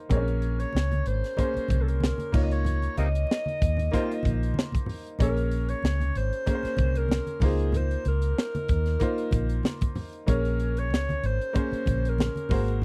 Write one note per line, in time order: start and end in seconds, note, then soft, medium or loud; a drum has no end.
0.00 0.09 A#3 medium
0.00 0.13 D#4 medium
0.00 0.13 F4 medium
0.00 0.13 C5 medium
0.09 0.64 A#1 loud
0.09 0.93 A#3 medium
0.09 0.18 C4 medium
0.09 0.94 G#4 medium
0.09 0.61 A#4 medium
0.09 0.95 C#5 medium
0.09 kick loud
0.09 closed hi-hat medium
0.09 muted conga soft
0.09 low conga medium
0.16 0.97 C#4 medium
0.28 closed hi-hat soft
0.42 closed hi-hat medium
0.60 1.09 C#5 medium
0.60 closed hi-hat medium
0.73 1.01 C#2 loud
0.73 snare loud
0.73 muted conga soft
0.92 closed hi-hat soft
0.92 muted conga soft
0.92 high conga medium
1.06 1.21 G#1 medium
1.06 1.83 C5 loud
1.06 closed hi-hat medium
1.24 snare soft
1.24 closed hi-hat medium
1.37 2.21 A#3 medium
1.37 2.21 C#4 medium
1.37 2.21 G#4 medium
1.37 2.22 C5 medium
1.37 kick medium
1.37 closed hi-hat medium
1.37 muted conga soft
1.54 muted fingered electric bass stroke soft
1.54 closed hi-hat medium
1.54 muted conga soft
1.68 2.11 C2 loud
1.68 kick medium
1.68 closed hi-hat medium
1.68 high conga medium
1.82 1.90 A4 medium
1.88 2.45 A#4 medium
1.88 closed hi-hat medium
2.00 snare loud
2.00 muted conga soft
2.00 high conga medium
2.18 closed hi-hat medium
2.18 muted conga soft
2.18 high conga medium
2.32 2.87 C#2 loud
2.32 3.35 A#3 medium
2.32 3.36 D#4 medium
2.32 3.36 F4 medium
2.32 3.37 C#5 medium
2.32 kick loud
2.32 crash medium
2.32 low conga medium
2.43 2.53 D#5 medium
2.51 2.98 C#5 loud
2.51 closed hi-hat soft
2.65 closed hi-hat medium
2.65 low conga medium
2.82 closed hi-hat soft
2.82 muted conga soft
2.96 3.24 C#2 loud
2.96 3.08 C3 medium
2.96 3.08 A#3 medium
2.96 3.08 D#4 medium
2.96 4.84 D#5 loud
2.96 closed hi-hat medium
3.15 closed hi-hat medium
3.27 muted conga soft
3.31 snare loud
3.46 closed hi-hat soft
3.46 high conga medium
3.62 3.88 D#2 medium
3.62 kick medium
3.62 closed hi-hat medium
3.77 closed hi-hat medium
3.77 low conga medium
3.91 4.13 C3 medium
3.91 4.75 A#3 medium
3.91 4.13 A#3 medium
3.91 4.75 D#4 medium
3.91 4.13 F4 loud
3.91 4.76 F4 medium
3.91 4.76 C5 medium
3.91 kick medium
3.91 closed hi-hat medium
3.91 muted conga soft
4.12 closed hi-hat medium
4.23 4.51 A#1 medium
4.23 kick medium
4.23 closed hi-hat medium
4.23 high conga medium
4.43 closed hi-hat medium
4.54 muted conga soft
4.54 high conga medium
4.59 snare loud
4.72 kick medium
4.72 closed hi-hat medium
4.72 muted conga soft
4.72 high conga soft
4.86 open hi-hat medium
4.86 low conga medium
5.07 closed hi-hat soft
5.19 5.73 A#1 loud
5.19 6.03 A#3 medium
5.19 6.03 C#4 medium
5.19 6.03 G#4 medium
5.19 5.71 A#4 medium
5.19 6.04 C#5 medium
5.19 kick loud
5.19 closed hi-hat medium
5.19 muted conga soft
5.19 low conga medium
5.37 closed hi-hat soft
5.37 muted conga soft
5.51 closed hi-hat medium
5.69 6.19 C#5 loud
5.69 closed hi-hat medium
5.82 6.10 C#2 loud
5.82 snare loud
5.82 muted conga soft
6.01 closed hi-hat soft
6.01 high conga medium
6.15 6.30 G#1 medium
6.15 6.99 C5 loud
6.15 closed hi-hat medium
6.33 closed hi-hat medium
6.46 7.29 A#3 medium
6.46 7.30 C#4 medium
6.46 7.30 G#4 medium
6.46 6.54 A#4 medium
6.46 kick medium
6.46 closed hi-hat medium
6.46 muted conga soft
6.55 7.34 C5 medium
6.63 muted fingered electric bass stroke soft
6.63 snare soft
6.63 closed hi-hat medium
6.63 muted conga soft
6.77 7.19 C2 medium
6.77 kick medium
6.77 closed hi-hat medium
6.77 high conga medium
6.95 7.43 A#4 loud
6.95 closed hi-hat medium
7.09 snare loud
7.09 high conga medium
7.27 closed hi-hat medium
7.27 high conga soft
7.40 7.95 C#2 loud
7.40 8.44 A#3 medium
7.40 8.44 D#4 medium
7.40 8.45 F4 medium
7.40 8.45 C5 medium
7.40 kick loud
7.40 open hi-hat medium
7.40 low conga medium
7.45 7.78 G#4 medium
7.59 closed hi-hat soft
7.72 closed hi-hat medium
7.72 low conga medium
7.77 8.07 C5 medium
7.91 closed hi-hat soft
8.05 8.32 C#2 loud
8.05 9.94 A#4 loud
8.05 closed hi-hat medium
8.22 closed hi-hat medium
8.38 snare loud
8.55 closed hi-hat soft
8.55 muted conga soft
8.55 high conga medium
8.69 8.96 D#2 medium
8.69 kick medium
8.69 closed hi-hat medium
8.86 snare soft
8.86 closed hi-hat medium
9.00 9.83 A#3 medium
9.00 9.84 D#4 medium
9.00 9.84 F4 medium
9.00 9.84 C5 medium
9.00 kick medium
9.00 closed hi-hat medium
9.00 muted conga soft
9.18 closed hi-hat medium
9.31 9.59 A#1 medium
9.31 kick loud
9.31 closed hi-hat medium
9.31 high conga medium
9.49 closed hi-hat medium
9.63 snare loud
9.63 high conga medium
9.81 kick loud
9.81 closed hi-hat medium
9.81 muted conga soft
9.81 high conga soft
9.95 open hi-hat medium
9.95 low conga medium
10.13 closed hi-hat soft
10.26 10.92 A#1 loud
10.26 11.10 A#3 medium
10.26 11.11 C#4 medium
10.26 11.11 G#4 medium
10.26 10.81 A#4 loud
10.26 11.12 C#5 medium
10.26 kick loud
10.26 closed hi-hat medium
10.26 low conga medium
10.45 closed hi-hat medium
10.60 closed hi-hat medium
10.77 11.28 C#5 loud
10.77 closed hi-hat medium
10.90 11.18 C#2 medium
10.90 snare loud
10.90 muted conga soft
11.09 closed hi-hat soft
11.09 muted conga soft
11.09 high conga medium
11.23 11.38 G#1 medium
11.23 12.10 C5 loud
11.23 closed hi-hat medium
11.41 closed hi-hat medium
11.53 12.37 A#3 medium
11.53 12.38 C#4 medium
11.53 12.38 G#4 medium
11.53 12.39 C5 medium
11.53 kick medium
11.53 closed hi-hat medium
11.53 muted conga soft
11.72 muted fingered electric bass stroke soft
11.72 closed hi-hat medium
11.72 muted conga soft
11.86 12.28 A#1 medium
11.86 kick medium
11.86 closed hi-hat medium
11.86 high conga medium
12.05 12.85 A#4 loud
12.05 closed hi-hat medium
12.18 snare loud
12.18 muted conga soft
12.18 high conga medium
12.36 closed hi-hat medium
12.36 muted conga soft
12.36 high conga soft
12.49 12.85 G#1 medium
12.49 12.85 A#3 medium
12.49 12.85 F#4 medium
12.49 12.85 G#4 medium
12.49 12.85 C5 medium
12.49 kick loud
12.49 open hi-hat medium
12.49 low conga medium
12.68 closed hi-hat soft